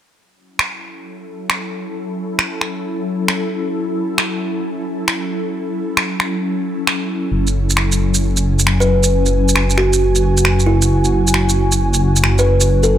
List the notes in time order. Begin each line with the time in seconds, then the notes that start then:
0.15 F#3
0.32 C#4 E4
0.53 A4
0.59 finger snap
1.50 finger snap
2.39 finger snap
2.61 finger snap
3.28 finger snap
4.18 finger snap
5.08 finger snap
5.97 finger snap
6.20 finger snap
6.87 finger snap
7.32 F#1
7.47 shaker
7.55 G#5
7.70 shaker
7.77 finger snap
7.92 shaker
8.14 shaker
8.37 shaker
8.49 F#4
8.59 shaker
8.67 finger snap
8.80 B4, shaker
9.03 shaker
9.26 shaker
9.49 shaker
9.56 finger snap
9.70 shaker
9.78 F#4, finger snap
9.93 shaker
10.15 shaker
10.37 shaker
10.45 finger snap
10.60 shaker
10.66 E4
10.82 shaker
11.05 shaker
11.27 shaker
11.34 finger snap
11.49 shaker
11.72 shaker
11.94 shaker
12.16 shaker
12.24 finger snap
12.38 B4, shaker
12.61 shaker
12.83 A4, shaker